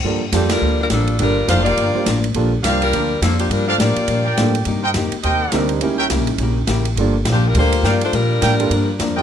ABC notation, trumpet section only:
X:1
M:4/4
L:1/8
Q:"Swing" 1/4=208
K:Gm
V:1 name="Trumpet section"
z8 | z2 [GBdf]3 z3 | z2 [GBdf]3 z3 | z [GBdf] z3 [GBdg]3 |
z [Bceg] z2 [Bceg]3 z | z [^A^c=eg] z6 | z6 [Bdfg] z | z2 [Bdfg] z4 [Bdeg] |]